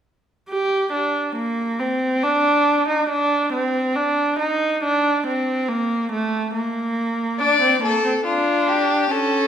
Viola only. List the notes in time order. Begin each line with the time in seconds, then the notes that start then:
0.50 G4
0.93 D4
1.36 A#3
1.80 C4
2.23 D4
2.89 D#4
3.09 D4
3.53 C4
3.96 D4
4.39 D#4
4.84 D4
5.27 C4
5.69 A#3
6.13 A3
6.54 A#3
7.40 D4
7.62 C4
7.82 A#3
8.04 C4
8.25 D4
9.12 C#4